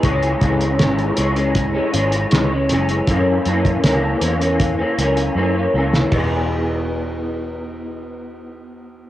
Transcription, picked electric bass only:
X:1
M:4/4
L:1/8
Q:1/4=79
K:E
V:1 name="Picked electric bass" clef=bass
C,, C,, G,,, C,,2 G,,, C,, F,,, | F,, F,, C,, E,,2 C,, F,, C,, | E,,,8 |]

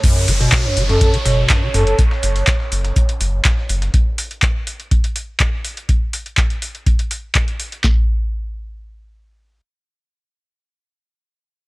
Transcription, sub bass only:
X:1
M:4/4
L:1/8
Q:1/4=123
K:F#m
V:1 name="Sub bass" clef=bass
z F,,, z F,,, z F,,, z F,,, | z F,,, z F,,, z F,,, z F,,, | z8 | z8 |
z8 | z8 |]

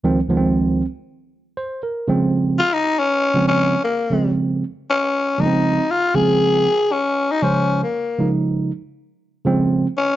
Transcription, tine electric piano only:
X:1
M:4/4
L:1/16
Q:"Swing 16ths" 1/4=118
K:Bbm
V:1 name="Tine electric piano" clef=bass
[D,,E,F,A,C] z [D,,E,F,A,_C=C]4 z6 c2 B2 | [D,F,A,C]4 z6 [D,F,A,C]3 z3 | [D,F,A,C]4 z6 [D,F,A,B,C]3 z3 | [D,F,A,C]4 z6 [D,F,A,c]3 z3 |
[D,F,A,E]4 z6 [D,F,A,C]3 z3 |]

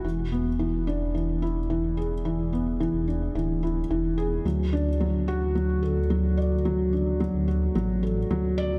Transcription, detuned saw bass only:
X:1
M:4/4
L:1/16
Q:1/4=109
K:Emix
V:1 name="Detuned saw bass" clef=bass
E,,,16- | E,,,4- E,,, E,,,3 D,,,4 E,,,4 | D,,16- | D,,4- D,, D,,3 A,,,4 D,,4 |]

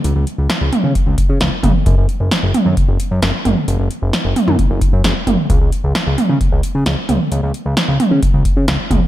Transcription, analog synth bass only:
X:1
M:4/4
L:1/16
Q:1/4=132
K:C#phr
V:1 name="Analog synth bass" clef=bass
C,, C,, z C,, z C,, z C, z C,, z C, C,, z C,, z | F,,, F,,, z F,,, z F,,, z F,, z F,,, z F,, F,,, z F,,, z | F,,, F,,, z F,,, z F,,, z F,, z F,,, z F,, F,,, z F,,, z | C,, C,, z C,, z C,, z C, z C,, z C, C,, z C,, z |
C,, C,, z C,, z C,, z C, z C,, z C, C,, z C,, z |]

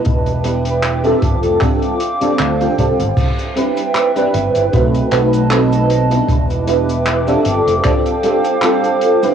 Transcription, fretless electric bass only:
X:1
M:4/4
L:1/16
Q:"Swing 16ths" 1/4=77
K:C
V:1 name="Fretless electric bass" clef=bass
E,,,4- E,,, z G,,, F,,, z4 D,, z C,, G,,, | C,, z4 z G,,, G,,, B,,, z B,,,4- B,,, z | E,,,4- E,,, z G,,, F,,, z8 |]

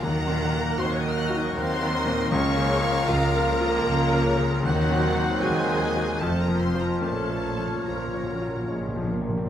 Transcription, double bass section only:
X:1
M:3/4
L:1/8
Q:1/4=76
K:Bbm
V:1 name="Double bass section" clef=bass
E,,2 E,,2 E,,2 | D,,2 D,,2 D,,2 | E,,2 E,,2 F,,,2 | B,,,2 B,,,2 B,,,2 |]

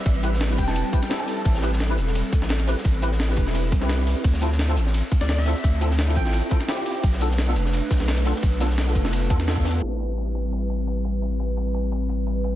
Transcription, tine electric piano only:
X:1
M:4/4
L:1/16
Q:"Swing 16ths" 1/4=172
K:Am
V:1 name="Tine electric piano"
z2 [CEGB] z2 [CEGB]4- [CEGB] [CEGB] z [CEGA]4- | [CEGA]2 [CEGB] z2 [CEGB] z8 [CEGB] z | z2 [CEGB] z2 [CEGB]4- [CEGB] z [CEGB]4- [CEGB] | z2 [CEFA] z2 [CEFA] z8 [CEFA] z |
z2 [CEFA] z2 [CEFA]4- [CEFA] [CEFA] z [CEFG]4 | z2 [B,DFA] z2 [B,DFA] z8 [B,DFA] z | z2 [B,DFA] z2 [B,DFA]4- [B,DFA] [B,DFA] z [B,DFA]4 | [CEGB]16- |
[CEGB]16 |]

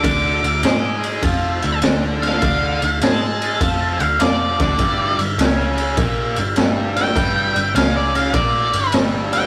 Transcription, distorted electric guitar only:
X:1
M:4/4
L:1/8
Q:"Swing" 1/4=101
K:G
V:1 name="Distorted electric guitar" clef=bass
[D,D] D, [^G,^G]2 [=F,=F] D, [D,D]2 | [D,D] D, [^G,^G]2 [=F,=F] D, [F,F] [D,D] | [G,,G,] G,, [^C,^C]2 [_B,,_B,] G,, [G,,G,]2 | [G,,G,] G,, [^C,^C]2 [_B,,_B,] G,, [G,,G,]2 |]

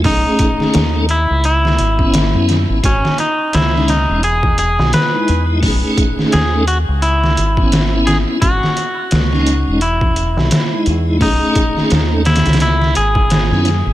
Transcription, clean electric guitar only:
X:1
M:4/4
L:1/16
Q:"Swing 16ths" 1/4=86
K:C#m
V:1 name="Clean electric guitar"
D6 E2 E6 z2 | C2 D2 E2 D2 G2 G2 B3 z | z4 G2 F2 E6 G2 | F8 E6 z2 |
D6 E2 E2 G6 |]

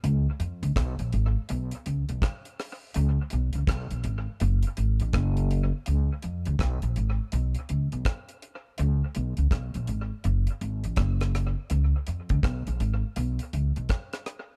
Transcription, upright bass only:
X:1
M:4/4
L:1/16
Q:"Swing 16ths" 1/4=82
K:Dbmix
V:1 name="Upright bass" clef=bass
D,, z F,, D,, C,, B,,, A,,, z C,, z D,, C,, z4 | D,, z C,, D,, C,, B,,, A,,, z G,,, z A,,, =A,,, G,,,3 z | D,, z F,, D,, C,, B,,, A,,, z C,, z D,, C,, z4 | D,, z C,, D,, C,, B,,, A,,, z G,,, z A,,, =A,,, G,,,3 z |
D,, z F,, D,, C,, B,,, A,,, z C,, z D,, C,, z4 |]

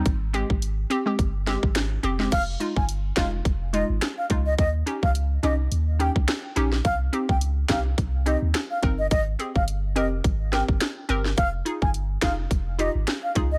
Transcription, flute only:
X:1
M:4/4
L:1/16
Q:"Swing 16ths" 1/4=106
K:Ab
V:1 name="Flute"
z16 | f z2 a z2 f z3 e z2 f z e | e z2 f z2 e z3 g z4 z | f z2 g z2 f z3 e z2 f z e |
e z2 f z2 e z3 g z4 z | f z2 a z2 f z3 e z2 f z e |]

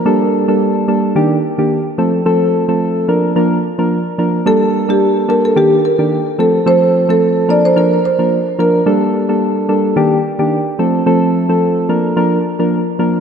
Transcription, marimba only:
X:1
M:4/4
L:1/16
Q:"Swing 16ths" 1/4=109
K:Bb
V:1 name="Marimba"
z16 | z16 | A2 z G z2 B A G z B z3 A z | c2 z A z2 d c B z c z3 B z |
z16 | z16 |]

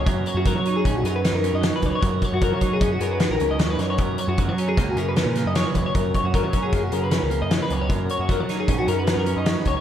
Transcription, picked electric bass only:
X:1
M:5/4
L:1/16
Q:1/4=153
K:D#phr
V:1 name="Picked electric bass" clef=bass
F,,2 z F,,2 F,3 A,,,2 F,,3 F,,2 F,,2 z C,, z | F,,2 z F,,2 F,3 F,,2 F,,3 A,,, C,,2 D,,2 F,,2 | F,,2 z F,,2 F,3 C,,2 F,,3 A,,2 F,,2 z E,, z | F,,2 z F,,2 F,3 F,,2 F,,3 C,,2 F,,2 z C,,2 |
F,,2 z F,,2 F,3 A,,,2 F,,3 F,,2 F,,2 z C,, z |]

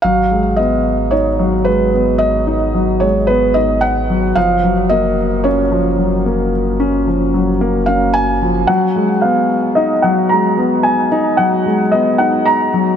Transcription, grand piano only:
X:1
M:4/4
L:1/8
Q:1/4=111
K:G#dor
V:1 name="Grand piano" clef=bass
F, G, B, z D F, G, B, | z D F, G, B, D z F, | E, F, A, z C E, F, A, | z C E, F, A, C z E, |
F, G, B, z D F, G, B, | z D F, G, B, D z F, |]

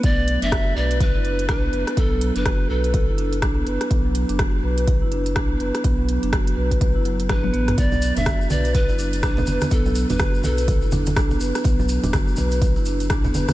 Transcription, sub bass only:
X:1
M:4/4
L:1/16
Q:"Swing 16ths" 1/4=124
K:Bm
V:1 name="Sub bass" clef=bass
B,,,3 F,,,3 B,,,3 F,,,3 B,,,2 F,,, z | B,,,3 F,,,3 B,,,3 F,,,3 B,,,2 F,,, z | B,,,3 F,,,3 B,,,3 F,,,3 B,,,2 F,,, z | B,,,3 F,,,3 B,,,3 F,,,3 A,,,2 A,,,2 |
B,,,3 F,,,3 B,,,3 F,,,3 B,,,2 F,,, z | B,,,3 F,,,3 B,,,3 F,,,3 B,,,2 F,,, z | B,,,3 F,,,3 B,,,3 F,,,3 B,,,2 F,,, z |]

